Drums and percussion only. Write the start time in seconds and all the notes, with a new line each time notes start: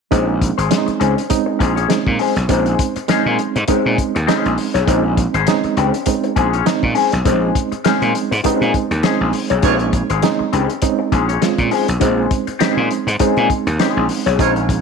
0.12 kick, closed hi-hat
0.42 kick, closed hi-hat
0.59 closed hi-hat
0.71 snare, closed hi-hat
0.88 closed hi-hat
1.01 closed hi-hat
1.18 closed hi-hat
1.30 kick, closed hi-hat
1.60 kick, closed hi-hat
1.77 closed hi-hat
1.90 snare, closed hi-hat
2.07 kick
2.19 open hi-hat
2.36 snare, closed hi-hat
2.49 kick, closed hi-hat
2.66 closed hi-hat
2.79 kick, closed hi-hat
2.96 closed hi-hat
3.08 snare, closed hi-hat
3.39 closed hi-hat
3.56 closed hi-hat
3.68 kick, closed hi-hat
3.98 kick, closed hi-hat
4.16 closed hi-hat
4.28 snare, closed hi-hat
4.45 closed hi-hat
4.58 open hi-hat
4.75 snare, closed hi-hat
4.88 kick, closed hi-hat
5.17 kick, closed hi-hat
5.34 closed hi-hat
5.47 snare, closed hi-hat
5.64 closed hi-hat
5.77 closed hi-hat
5.94 closed hi-hat
6.06 kick, closed hi-hat
6.24 closed hi-hat
6.36 kick, closed hi-hat
6.53 closed hi-hat
6.66 snare, closed hi-hat
6.83 kick
6.95 open hi-hat
7.12 snare, closed hi-hat
7.25 kick, closed hi-hat
7.55 kick, closed hi-hat
7.72 closed hi-hat
7.85 snare, closed hi-hat
8.02 closed hi-hat
8.15 closed hi-hat
8.32 closed hi-hat
8.44 kick, closed hi-hat
8.62 closed hi-hat
8.74 kick, closed hi-hat
8.91 closed hi-hat
9.03 snare, closed hi-hat
9.33 open hi-hat
9.50 closed hi-hat
9.62 kick, closed hi-hat
9.79 closed hi-hat
9.93 kick, closed hi-hat
10.10 closed hi-hat
10.22 snare, closed hi-hat
10.53 closed hi-hat
10.70 closed hi-hat
10.82 kick, closed hi-hat
11.12 kick, closed hi-hat
11.29 closed hi-hat
11.42 snare, closed hi-hat
11.58 kick, closed hi-hat
11.71 open hi-hat
11.88 closed hi-hat
12.01 kick, closed hi-hat
12.31 kick, closed hi-hat
12.47 closed hi-hat
12.60 snare, closed hi-hat
12.91 closed hi-hat
13.08 closed hi-hat
13.19 kick, closed hi-hat
13.37 closed hi-hat
13.50 kick, closed hi-hat
13.67 closed hi-hat
13.79 snare, closed hi-hat
14.09 open hi-hat
14.26 snare, closed hi-hat
14.39 kick, closed hi-hat
14.56 closed hi-hat
14.69 kick, closed hi-hat